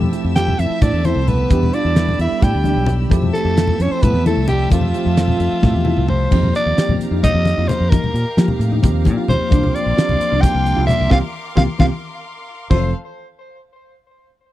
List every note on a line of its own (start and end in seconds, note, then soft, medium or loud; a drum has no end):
0.00 0.33 F3 medium
0.00 0.33 A3 medium
0.00 0.33 C4 medium
0.00 0.33 E4 medium
0.00 0.33 G4 medium
0.00 6.29 G4 medium
0.00 1.50 E5 medium
0.00 1.50 A5 medium
0.00 3.07 E6 medium
0.00 low conga medium
0.13 0.28 G4 medium
0.13 closed hi-hat medium
0.25 0.53 F2 medium
0.35 0.78 F3 medium
0.35 0.78 A3 medium
0.35 0.78 C4 medium
0.35 0.79 E4 medium
0.35 0.51 F4 medium
0.35 0.61 G4 medium
0.35 0.79 A4 medium
0.35 0.61 G5 medium
0.35 snare loud
0.35 closed hi-hat medium
0.48 high conga medium
0.48 low conga medium
0.59 0.69 F2 medium
0.59 0.85 E4 medium
0.59 0.84 E5 medium
0.59 snare soft
0.59 closed hi-hat medium
0.70 muted fingered electric bass stroke soft
0.81 0.91 A2 medium
0.81 1.51 F3 medium
0.81 1.51 A3 medium
0.81 1.51 C4 soft
0.81 1.07 D4 medium
0.81 1.49 E4 medium
0.81 1.52 A4 medium
0.81 1.07 D5 medium
0.81 kick loud
0.81 snare soft
0.81 closed hi-hat medium
0.81 low conga medium
0.93 1.12 E2 medium
1.05 1.31 C4 medium
1.05 1.20 E4 medium
1.05 1.30 C5 medium
1.05 closed hi-hat medium
1.05 high conga medium
1.05 low conga soft
1.16 1.44 C2 medium
1.28 1.76 B3 medium
1.28 1.76 B4 medium
1.28 closed hi-hat medium
1.28 low conga medium
1.49 1.70 E2 medium
1.49 1.93 G3 medium
1.49 1.93 B3 medium
1.49 1.93 D4 medium
1.49 1.93 E4 medium
1.49 1.65 G4 medium
1.49 1.93 G4 medium
1.49 3.10 D5 medium
1.49 3.09 B5 medium
1.49 kick medium
1.49 closed hi-hat medium
1.49 high conga medium
1.63 low conga medium
1.73 2.20 D4 medium
1.73 1.88 F4 medium
1.73 2.20 D5 medium
1.73 closed hi-hat medium
1.85 2.13 E2 medium
1.96 2.39 G3 medium
1.96 2.39 B3 medium
1.96 2.39 D4 medium
1.96 2.11 E4 medium
1.96 2.39 E4 medium
1.96 2.39 A4 medium
1.96 snare loud
1.96 closed hi-hat medium
2.09 high conga medium
2.09 low conga medium
2.19 2.29 E2 medium
2.19 2.45 E4 medium
2.19 2.45 E5 medium
2.19 closed hi-hat medium
2.32 muted fingered electric bass stroke soft
2.40 2.52 A2 medium
2.40 3.10 G3 medium
2.40 3.11 B3 medium
2.40 3.10 D4 medium
2.40 3.10 E4 medium
2.40 3.10 G4 medium
2.40 2.95 G4 medium
2.40 2.95 G5 medium
2.40 kick medium
2.40 snare soft
2.40 closed hi-hat medium
2.40 low conga medium
2.53 2.73 D2 medium
2.53 low conga soft
2.64 2.80 D4 medium
2.64 closed hi-hat medium
2.64 high conga medium
2.64 low conga soft
2.76 3.05 B1 medium
2.86 closed hi-hat medium
2.86 low conga medium
3.10 3.30 F2 medium
3.10 3.53 F3 medium
3.10 3.53 A3 medium
3.10 3.53 C4 medium
3.10 3.54 E4 medium
3.10 3.54 G4 loud
3.10 3.26 A4 medium
3.10 6.30 E5 medium
3.10 6.29 A5 medium
3.10 6.30 E6 medium
3.10 kick loud
3.10 closed hi-hat medium
3.10 high conga medium
3.22 low conga medium
3.33 3.82 A3 medium
3.33 3.48 G4 medium
3.33 3.83 A4 medium
3.33 closed hi-hat medium
3.45 3.74 F2 medium
3.57 3.99 F3 medium
3.57 4.00 A3 medium
3.57 4.00 C4 medium
3.57 4.00 E4 medium
3.57 3.72 F4 medium
3.57 4.00 A4 medium
3.57 snare loud
3.57 closed hi-hat medium
3.67 high conga medium
3.67 low conga medium
3.80 3.89 F2 medium
3.80 3.97 C#4 medium
3.80 3.93 C#5 medium
3.80 closed hi-hat medium
3.91 4.08 C4 medium
3.91 4.04 C5 medium
3.91 muted fingered electric bass stroke soft
4.02 4.13 A2 medium
4.02 4.70 F3 medium
4.02 4.70 A3 medium
4.02 4.70 C4 medium
4.02 4.72 E4 medium
4.02 4.71 G4 medium
4.02 4.26 B4 loud
4.02 kick loud
4.02 closed hi-hat medium
4.02 low conga medium
4.06 4.27 B3 medium
4.14 4.33 E2 medium
4.14 low conga soft
4.26 4.48 A3 medium
4.26 4.40 E4 medium
4.26 4.48 A4 medium
4.26 closed hi-hat medium
4.26 high conga medium
4.26 low conga soft
4.37 4.66 C2 medium
4.48 4.70 G4 medium
4.48 closed hi-hat medium
4.48 low conga medium
4.52 4.72 G3 medium
4.70 4.91 F2 medium
4.70 5.14 F3 medium
4.70 6.07 F3 medium
4.70 5.14 A3 medium
4.70 5.14 C4 medium
4.70 6.05 F4 medium
4.70 5.14 G4 medium
4.70 4.86 A4 medium
4.70 5.15 E5 medium
4.70 kick medium
4.70 closed hi-hat medium
4.70 high conga medium
4.70 low conga soft
4.81 low conga medium
4.94 5.09 G4 medium
4.94 closed hi-hat medium
5.05 5.35 F2 medium
5.05 low conga soft
5.17 5.60 F3 medium
5.17 5.60 A3 medium
5.17 5.60 C4 medium
5.17 5.33 F4 medium
5.17 5.61 A4 medium
5.17 5.60 E5 medium
5.17 snare loud
5.17 closed hi-hat medium
5.28 high conga medium
5.28 low conga medium
5.40 5.50 F2 medium
5.40 closed hi-hat medium
5.52 muted fingered electric bass stroke soft
5.62 5.73 A2 medium
5.62 6.29 F3 medium
5.62 6.32 A3 medium
5.62 6.30 C4 medium
5.62 6.31 G4 medium
5.62 5.84 E5 medium
5.62 kick medium
5.62 snare medium
5.62 low conga medium
5.75 5.94 E2 medium
5.85 6.01 E4 medium
5.85 6.07 E5 medium
5.85 high tom medium
5.85 high conga medium
5.97 6.26 C2 medium
5.97 mid tom medium
5.97 low conga soft
6.08 6.52 C5 medium
6.08 6.30 F5 medium
6.08 mid tom medium
6.31 6.51 F2 medium
6.31 6.74 F3 medium
6.31 6.74 A#3 medium
6.31 6.74 C4 medium
6.31 6.74 D#4 medium
6.31 6.47 D#4 medium
6.31 9.49 G4 medium
6.31 6.75 G4 medium
6.31 12.66 F5 medium
6.31 9.49 A#5 medium
6.31 kick medium
6.31 crash medium
6.31 high conga loud
6.43 low conga medium
6.55 6.98 D5 loud
6.55 closed hi-hat medium
6.66 6.76 D#2 medium
6.76 7.19 F3 medium
6.76 7.20 A#3 medium
6.76 7.20 C4 medium
6.76 7.20 D#4 medium
6.76 7.20 G4 medium
6.76 6.93 G4 medium
6.76 muted fingered electric bass stroke soft
6.76 snare loud
6.76 closed hi-hat medium
6.89 6.99 F2 medium
6.89 high conga medium
6.89 low conga medium
7.00 muted fingered electric bass stroke soft
7.00 closed hi-hat medium
7.11 7.21 F2 medium
7.11 7.27 D#4 medium
7.11 low conga soft
7.22 8.08 F3 medium
7.22 8.08 A#3 medium
7.22 8.08 C4 medium
7.22 8.08 D#4 medium
7.22 8.08 G4 medium
7.22 7.69 D#5 loud
7.22 kick loud
7.22 closed hi-hat medium
7.22 low conga loud
7.34 7.54 F2 medium
7.34 low conga soft
7.45 closed hi-hat medium
7.45 high conga medium
7.58 7.68 F2 medium
7.58 7.72 F4 medium
7.68 7.91 C5 medium
7.68 snare soft
7.68 closed hi-hat medium
7.68 low conga medium
7.80 8.00 F2 medium
7.80 low conga soft
7.90 8.07 D#4 medium
7.90 8.60 A#4 medium
7.90 kick loud
7.90 closed hi-hat medium
7.90 high conga medium
8.03 muted fingered electric bass stroke soft
8.03 low conga medium
8.14 8.24 A#2 medium
8.14 closed hi-hat medium
8.37 8.47 F3 medium
8.37 8.80 F3 medium
8.37 8.80 A#3 medium
8.37 8.80 C4 medium
8.37 8.80 D#4 medium
8.37 8.52 G4 medium
8.37 8.81 G4 medium
8.37 snare loud
8.37 closed hi-hat medium
8.48 high conga medium
8.48 low conga medium
8.59 8.79 A2 medium
8.59 closed hi-hat medium
8.72 8.87 D#4 medium
8.72 low conga soft
8.82 9.08 D#2 medium
8.82 9.48 F3 medium
8.82 9.49 A#3 medium
8.82 9.49 C4 medium
8.82 9.52 D#4 medium
8.82 9.49 G4 medium
8.82 kick loud
8.82 closed hi-hat medium
8.82 low conga medium
9.05 9.16 A#2 medium
9.05 kick medium
9.05 closed hi-hat medium
9.05 high conga loud
9.17 9.32 F4 medium
9.28 9.39 D#2 medium
9.28 9.76 C5 medium
9.28 snare soft
9.28 closed hi-hat medium
9.28 low conga medium
9.40 muted fingered electric bass stroke soft
9.40 low conga soft
9.49 9.71 C2 loud
9.49 9.93 F3 medium
9.49 9.93 A#3 medium
9.49 9.94 C4 medium
9.49 9.94 D4 medium
9.49 9.66 D4 medium
9.49 9.94 G4 medium
9.49 12.68 A#4 medium
9.49 12.68 C6 medium
9.49 12.68 D6 medium
9.49 kick loud
9.49 closed hi-hat medium
9.49 high conga medium
9.64 low conga medium
9.75 10.43 D5 medium
9.75 closed hi-hat medium
9.86 9.96 A#1 medium
9.96 10.39 F3 medium
9.96 10.39 A#3 medium
9.96 10.39 C4 medium
9.96 10.39 D4 medium
9.96 10.12 F4 medium
9.96 10.40 G4 medium
9.96 muted fingered electric bass stroke soft
9.96 snare loud
9.96 closed hi-hat medium
10.09 10.19 C2 medium
10.09 high conga medium
10.09 low conga medium
10.21 muted fingered electric bass stroke soft
10.21 closed hi-hat medium
10.31 10.42 C2 medium
10.31 10.46 D4 medium
10.31 low conga soft
10.41 11.11 F3 medium
10.41 11.09 A#3 medium
10.41 11.10 C4 medium
10.41 11.11 D4 medium
10.41 11.11 G4 medium
10.41 10.86 G5 loud
10.41 kick loud
10.41 snare soft
10.41 closed hi-hat medium
10.41 low conga medium
10.55 10.74 C2 medium
10.55 low conga soft
10.66 closed hi-hat medium
10.76 10.87 C2 medium
10.76 10.91 F4 medium
10.87 11.09 E5 medium
10.87 snare soft
10.87 closed hi-hat medium
10.87 low conga medium
11.00 11.10 C2 medium
11.00 low conga soft
11.10 11.20 C2 medium
11.10 11.18 A#3 medium
11.10 11.18 C4 medium
11.10 11.18 C4 loud
11.10 11.18 F4 medium
11.10 11.18 G4 loud
11.10 11.18 F5 loud
11.10 kick medium
11.10 snare medium
11.10 high conga medium
11.55 11.66 C2 medium
11.55 11.64 A#3 loud
11.55 11.63 C4 medium
11.55 11.64 C4 medium
11.55 11.63 F4 loud
11.55 11.64 F4 loud
11.55 11.64 G4 loud
11.55 11.63 F5 medium
11.55 kick medium
11.55 snare medium
11.55 high conga loud
11.78 11.88 C2 medium
11.78 11.86 A#3 medium
11.78 11.87 C4 medium
11.78 11.87 F4 medium
11.78 11.87 F4 loud
11.78 11.87 G4 loud
11.78 11.86 F5 medium
11.78 kick loud
11.78 snare loud
11.78 high conga loud
12.70 12.92 F1 medium
12.70 12.92 F3 medium
12.70 12.92 A3 medium
12.70 12.92 C4 medium
12.70 12.92 F4 medium
12.70 12.84 F4 medium
12.70 12.92 A4 medium
12.70 12.92 C5 medium
12.70 12.93 F5 medium
12.70 kick medium
12.70 crash medium
12.70 high conga medium